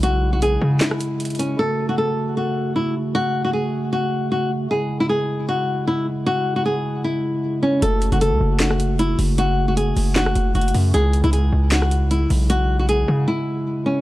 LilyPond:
<<
  \new Staff \with { instrumentName = "Nylon-string guitar" } { \time 4/4 \key fis \minor \tempo 4 = 154 fis'8. fis'16 gis'4 e'4. cis'8 | a'8. fis'16 a'4 fis'4 e'8 r8 | fis'8. fis'16 gis'4 fis'4 fis'8 r8 | gis'8. e'16 gis'4 fis'4 e'8 r8 |
fis'8. fis'16 gis'4 e'4. cis'8 | a'8. fis'16 a'4 fis'4 e'8 r8 | fis'8. fis'16 gis'4 fis'4 fis'8 r8 | gis'8. e'16 gis'4 fis'4 e'8 r8 |
fis'8. fis'16 gis'4 e'4. cis'8 | }
  \new Staff \with { instrumentName = "Pipe organ" } { \time 4/4 \key fis \minor <gis e'>1 | <a fis'>1~ | <a fis'>1 | <gis e'>1~ |
<gis e'>1 | <a fis'>1~ | <a fis'>1 | <gis e'>1~ |
<gis e'>1 | }
  \new Staff \with { instrumentName = "Pipe organ" } { \clef bass \time 4/4 \key fis \minor cis1 | cis1~ | cis1 | cis1~ |
cis1~ | cis1~ | cis1~ | cis1~ |
cis1 | }
  \new Staff \with { instrumentName = "808-style bass" } { \clef bass \time 4/4 \key fis \minor b,,4. cis8 r2 | r1 | r1 | r1 |
r1 | fis,,8. fis,,8 cis,16 fis,,2 fis,,8~ | fis,,4. fis,,4 fis,,8 fis,,8 fis,8 | cis,8. cis,8. cis,2 b,,8~ |
b,,4. cis8 r2 | }
  \new DrumStaff \with { instrumentName = "Drums" } \drummode { \time 4/4 hh4 hh4 <hc hh sn>16 ss16 hh8 hh32 hh32 hh32 hh32 hh8 | r4 r4 r4 r4 | r4 r4 r4 r4 | r4 r4 r4 r4 |
r4 r4 r4 r4 | hh8 hh16 hh16 hh4 <hc hh sn>16 ss16 hh8 hh8 hho8 | hh4 hh8 hho8 <hc hh sn>16 ss16 hh8 \tuplet 3/2 { hh16 hh16 hh16 hho16 r16 r16 } | hh8 hh16 hh16 hh4 <hc hh sn>16 ss16 hh8 hh8 hho8 |
hh4 hh4 r4 r4 | }
>>